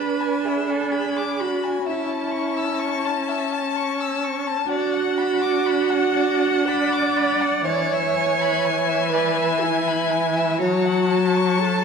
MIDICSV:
0, 0, Header, 1, 5, 480
1, 0, Start_track
1, 0, Tempo, 947867
1, 945, Time_signature, 3, 2, 24, 8
1, 2863, Tempo, 993377
1, 5854, End_track
2, 0, Start_track
2, 0, Title_t, "Violin"
2, 0, Program_c, 0, 40
2, 0, Note_on_c, 0, 83, 53
2, 105, Note_on_c, 0, 80, 52
2, 113, Note_off_c, 0, 83, 0
2, 230, Note_on_c, 0, 76, 52
2, 237, Note_off_c, 0, 80, 0
2, 356, Note_on_c, 0, 80, 53
2, 363, Note_off_c, 0, 76, 0
2, 466, Note_on_c, 0, 83, 60
2, 473, Note_off_c, 0, 80, 0
2, 591, Note_on_c, 0, 86, 55
2, 598, Note_off_c, 0, 83, 0
2, 710, Note_on_c, 0, 83, 62
2, 718, Note_off_c, 0, 86, 0
2, 828, Note_on_c, 0, 80, 56
2, 836, Note_off_c, 0, 83, 0
2, 943, Note_off_c, 0, 80, 0
2, 946, Note_on_c, 0, 76, 57
2, 1057, Note_on_c, 0, 81, 52
2, 1064, Note_off_c, 0, 76, 0
2, 1170, Note_on_c, 0, 85, 56
2, 1178, Note_off_c, 0, 81, 0
2, 1300, Note_on_c, 0, 88, 62
2, 1307, Note_off_c, 0, 85, 0
2, 1412, Note_on_c, 0, 85, 67
2, 1420, Note_off_c, 0, 88, 0
2, 1546, Note_on_c, 0, 81, 60
2, 1554, Note_off_c, 0, 85, 0
2, 1664, Note_on_c, 0, 76, 66
2, 1672, Note_off_c, 0, 81, 0
2, 1785, Note_on_c, 0, 81, 66
2, 1792, Note_off_c, 0, 76, 0
2, 1905, Note_on_c, 0, 85, 73
2, 1912, Note_off_c, 0, 81, 0
2, 2027, Note_on_c, 0, 88, 62
2, 2034, Note_off_c, 0, 85, 0
2, 2148, Note_on_c, 0, 85, 67
2, 2156, Note_off_c, 0, 88, 0
2, 2261, Note_on_c, 0, 81, 67
2, 2269, Note_off_c, 0, 85, 0
2, 2378, Note_off_c, 0, 81, 0
2, 2381, Note_on_c, 0, 74, 69
2, 2500, Note_on_c, 0, 78, 63
2, 2508, Note_off_c, 0, 74, 0
2, 2623, Note_on_c, 0, 83, 68
2, 2630, Note_off_c, 0, 78, 0
2, 2743, Note_on_c, 0, 86, 71
2, 2750, Note_off_c, 0, 83, 0
2, 2866, Note_on_c, 0, 83, 69
2, 2873, Note_off_c, 0, 86, 0
2, 2983, Note_on_c, 0, 78, 67
2, 2990, Note_off_c, 0, 83, 0
2, 3110, Note_on_c, 0, 74, 70
2, 3117, Note_off_c, 0, 78, 0
2, 3230, Note_on_c, 0, 78, 68
2, 3237, Note_off_c, 0, 74, 0
2, 3359, Note_on_c, 0, 83, 77
2, 3366, Note_off_c, 0, 78, 0
2, 3480, Note_on_c, 0, 86, 67
2, 3487, Note_off_c, 0, 83, 0
2, 3594, Note_on_c, 0, 83, 70
2, 3601, Note_off_c, 0, 86, 0
2, 3712, Note_on_c, 0, 78, 68
2, 3720, Note_off_c, 0, 83, 0
2, 3832, Note_off_c, 0, 78, 0
2, 3840, Note_on_c, 0, 74, 72
2, 3967, Note_on_c, 0, 76, 62
2, 3974, Note_off_c, 0, 74, 0
2, 4077, Note_on_c, 0, 80, 69
2, 4084, Note_off_c, 0, 76, 0
2, 4196, Note_on_c, 0, 83, 75
2, 4203, Note_off_c, 0, 80, 0
2, 4311, Note_on_c, 0, 80, 71
2, 4319, Note_off_c, 0, 83, 0
2, 4424, Note_on_c, 0, 76, 74
2, 4432, Note_off_c, 0, 80, 0
2, 4544, Note_on_c, 0, 74, 67
2, 4552, Note_off_c, 0, 76, 0
2, 4660, Note_on_c, 0, 76, 73
2, 4667, Note_off_c, 0, 74, 0
2, 4778, Note_on_c, 0, 80, 79
2, 4785, Note_off_c, 0, 76, 0
2, 4905, Note_on_c, 0, 83, 70
2, 4912, Note_off_c, 0, 80, 0
2, 5019, Note_on_c, 0, 80, 76
2, 5026, Note_off_c, 0, 83, 0
2, 5140, Note_on_c, 0, 76, 70
2, 5148, Note_off_c, 0, 80, 0
2, 5256, Note_off_c, 0, 76, 0
2, 5259, Note_on_c, 0, 73, 69
2, 5376, Note_on_c, 0, 78, 61
2, 5383, Note_off_c, 0, 73, 0
2, 5501, Note_on_c, 0, 81, 66
2, 5508, Note_off_c, 0, 78, 0
2, 5624, Note_on_c, 0, 85, 74
2, 5631, Note_off_c, 0, 81, 0
2, 5758, Note_on_c, 0, 81, 67
2, 5765, Note_off_c, 0, 85, 0
2, 5854, Note_off_c, 0, 81, 0
2, 5854, End_track
3, 0, Start_track
3, 0, Title_t, "Violin"
3, 0, Program_c, 1, 40
3, 0, Note_on_c, 1, 83, 47
3, 943, Note_on_c, 1, 81, 61
3, 951, Note_off_c, 1, 83, 0
3, 2375, Note_on_c, 1, 78, 71
3, 2382, Note_off_c, 1, 81, 0
3, 3826, Note_on_c, 1, 80, 70
3, 3833, Note_off_c, 1, 78, 0
3, 5247, Note_on_c, 1, 81, 72
3, 5255, Note_off_c, 1, 80, 0
3, 5854, Note_off_c, 1, 81, 0
3, 5854, End_track
4, 0, Start_track
4, 0, Title_t, "Cello"
4, 0, Program_c, 2, 42
4, 0, Note_on_c, 2, 71, 75
4, 224, Note_on_c, 2, 68, 70
4, 231, Note_off_c, 2, 71, 0
4, 341, Note_off_c, 2, 68, 0
4, 344, Note_on_c, 2, 69, 72
4, 464, Note_on_c, 2, 68, 78
4, 472, Note_off_c, 2, 69, 0
4, 707, Note_on_c, 2, 66, 74
4, 715, Note_off_c, 2, 68, 0
4, 943, Note_on_c, 2, 64, 73
4, 951, Note_off_c, 2, 66, 0
4, 1662, Note_off_c, 2, 64, 0
4, 2372, Note_on_c, 2, 66, 89
4, 3348, Note_on_c, 2, 74, 106
4, 3355, Note_off_c, 2, 66, 0
4, 3826, Note_on_c, 2, 73, 101
4, 3833, Note_off_c, 2, 74, 0
4, 4533, Note_off_c, 2, 73, 0
4, 4536, Note_on_c, 2, 71, 89
4, 4774, Note_on_c, 2, 64, 85
4, 4781, Note_off_c, 2, 71, 0
4, 5247, Note_on_c, 2, 66, 95
4, 5254, Note_off_c, 2, 64, 0
4, 5737, Note_on_c, 2, 69, 95
4, 5744, Note_off_c, 2, 66, 0
4, 5854, Note_off_c, 2, 69, 0
4, 5854, End_track
5, 0, Start_track
5, 0, Title_t, "Viola"
5, 0, Program_c, 3, 41
5, 0, Note_on_c, 3, 62, 60
5, 937, Note_off_c, 3, 62, 0
5, 940, Note_on_c, 3, 61, 59
5, 2358, Note_off_c, 3, 61, 0
5, 2374, Note_on_c, 3, 62, 75
5, 3810, Note_off_c, 3, 62, 0
5, 3826, Note_on_c, 3, 52, 80
5, 5248, Note_on_c, 3, 54, 75
5, 5255, Note_off_c, 3, 52, 0
5, 5854, Note_off_c, 3, 54, 0
5, 5854, End_track
0, 0, End_of_file